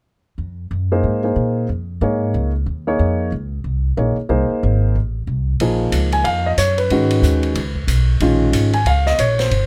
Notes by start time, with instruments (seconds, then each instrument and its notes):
0.38 upright bass F2
0.71 upright bass F#2
0.92 grand piano A#3 D#4 G#4 C5
1.03 upright bass G#2
1.24 grand piano A#3 D#4 G#4 C5
1.36 upright bass A#2
1.69 upright bass F2
2.01 upright bass G#2, grand piano A#3 D#4 G#4 C#5
2.34 upright bass C#2
2.66 upright bass D#2
2.87 grand piano A#3 D#4 G#4 C#5
2.99 upright bass F2
3.32 upright bass C#2
3.64 upright bass C2
3.97 upright bass A#1, grand piano A#3 D#4 G#4 C#5
4.17 muted upright bass stroke
4.29 upright bass C2, grand piano A#3 D#4 G#4 C5
4.50 muted upright bass stroke
4.63 upright bass G#1
4.95 upright bass A1
5.27 upright bass C2
5.60 upright bass A#1, grand piano F3 A#3 D#4 G#4, ride
5.92 upright bass C#2, hi-hat pedal, ride
6.12 grand piano G#5, ride
6.24 upright bass F2, grand piano F5, ride
6.46 grand piano D#5
6.57 upright bass F#2, grand piano C#5, hi-hat pedal, ride
6.78 grand piano B4, ride
6.90 upright bass G#2, grand piano D#3 G#3 C#4 F#4, ride
7.11 ride
7.22 upright bass D#2, hi-hat pedal
7.43 ride
7.55 upright bass C#2, ride
7.76 kick
7.87 upright bass B1, hi-hat pedal, ride
8.20 upright bass A#1, grand piano D#3 G#3 C#4 F4, ride
8.53 upright bass G#1, hi-hat pedal, ride
8.73 grand piano G#5, ride
8.85 upright bass C#2, grand piano F5, ride
9.06 grand piano D#5, snare
9.18 upright bass A#1, grand piano C#5, hi-hat pedal, ride
9.39 grand piano C5, snare, ride
9.51 upright bass G1, ride